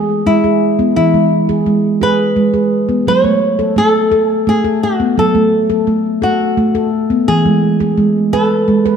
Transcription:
Already playing: E3 G#4
0.26 G#3 E4
0.44 G#4
0.79 B3
0.96 E3 E4
1.14 G#3
1.49 G#4
1.66 G#3
2.01 G#4 B4
2.36 G#3
2.54 G#4
2.89 B3
3.07 F#3 C#5
3.24 A3
3.59 A4
3.76 A3 A4
4.12 A4
4.28 G#4
4.47 A3 G#4
4.64 A4
4.83 F#4
5.00 B3
5.18 F#3 A4
5.35 A3
5.70 A4
5.87 A3
6.22 F#4 A4
6.57 A3
6.75 A4
7.10 B3
7.28 E3 G#4
7.46 G#3
7.80 G#4
7.98 G#3
8.33 A4 B4
8.68 G#3
8.86 B4

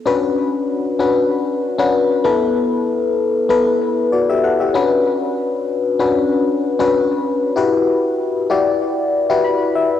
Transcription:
0.05 C#4 D4 F#4 B4
0.99 C#4 D4 F#4 B4
1.79 C#4 D4 F#4 B4
2.24 B3 E4 A4 B4
3.49 B3 E4 A4 B4
4.12 F#4 D5
4.30 G4 E5
4.44 A4 F#5
4.60 G4 E5
4.74 C#4 D4 F#4 B4
5.99 C#4 D4 F#4 B4
6.79 C#4 D4 F#4 B4
7.56 E4 F#4 G4 B4
8.50 E4 F#4 G4 D5
9.30 E4 F#4 G4 B4
9.44 B5
9.75 E5

